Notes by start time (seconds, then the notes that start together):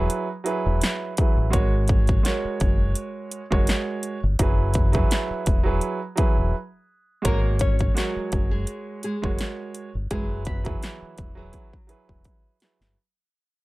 Already playing: F#3 E4 G#4 B4
0.10 closed hi-hat
0.44 F#3 E4 G#4 B4, closed hi-hat
0.66 E1
0.81 snare, closed hi-hat
1.17 F#3 E4 G#4 B4, kick, closed hi-hat
1.37 A1
1.50 G#1 G#3 F#4 A#4 C#5, kick, closed hi-hat
1.88 kick, closed hi-hat
2.07 kick, closed hi-hat
2.23 G#3 F#4 A#4 C#5, snare, closed hi-hat
2.45 muted fingered electric bass stroke
2.60 F#1, kick, closed hi-hat
2.95 closed hi-hat
3.31 closed hi-hat
3.50 F#1 G#3 F#4 A#4 C#5, kick
3.67 snare, closed hi-hat
4.03 closed hi-hat
4.23 G1
4.39 F#1 F#3 E4 G#4 B4, kick, closed hi-hat
4.74 kick, closed hi-hat
4.92 F#3 E4 G#4 B4, kick, closed hi-hat
5.11 snare, closed hi-hat
5.30 muted fingered electric bass stroke
5.46 E1, kick, closed hi-hat
5.63 F#3 E4 G#4 B4
5.81 closed hi-hat
6.16 F#3 E4 G#4 B4, kick, closed hi-hat
6.38 E1
7.22 G#1 G#3 F#4 A#4 C#5, kick, closed hi-hat
7.26 A#3
7.59 C#4 C#5, kick, closed hi-hat
7.79 kick, closed hi-hat
7.94 F#3 G#3 F#4 A#4 C#5, snare, closed hi-hat
8.16 muted fingered electric bass stroke
8.32 F#1, kick, closed hi-hat
8.51 G#3 G#4
8.67 closed hi-hat
9.03 G#3 G#4, closed hi-hat
9.22 F#1 G#3 F#4 A#4 C#5, kick
9.39 snare, closed hi-hat
9.74 closed hi-hat
9.95 G1
10.11 F#1 F#3 G#3 E4 G#4 B4, kick, closed hi-hat
10.45 B3 B4, kick, closed hi-hat
10.64 F#3 E4 G#4 B4, kick, closed hi-hat
10.82 E3 E4, snare, closed hi-hat
11.02 muted fingered electric bass stroke
11.18 E1, kick, closed hi-hat
11.35 F#3 E4 F#4 G#4 B4
11.53 kick, closed hi-hat
11.73 kick
11.87 F#3 E4 G#4 B4, closed hi-hat
12.09 E1, kick
12.24 kick, closed hi-hat
12.60 F#3 E4 G#4 B4, snare, closed hi-hat
12.81 G1, snare